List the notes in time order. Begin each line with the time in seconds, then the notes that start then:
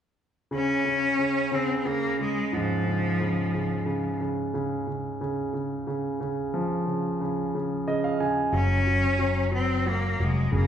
0.51 C#3 C#4
0.85 C#3
1.19 C#3
1.52 C#3 C4
1.78 C4
1.85 C#3 A#3
2.19 C#3 G#3
2.53 G#2 F3
2.86 C#3
3.21 C#3
3.55 C#3
3.86 C#3
4.21 C#3
4.54 C#3
4.87 C#3
5.21 C#3
5.54 C#3
5.87 C#3
6.20 C#3
6.54 F3
6.86 C#3
7.21 C#3
7.55 C#3
7.87 C#3 D#5
8.04 F5
8.20 C#3 G#5
8.52 F#1 F#3 C#4
8.87 F#3
9.19 F#3
9.51 F#3 C4
9.86 F#3 A#3
10.20 F1 F#3 G#3
10.52 F#1 C#3
10.56 A#3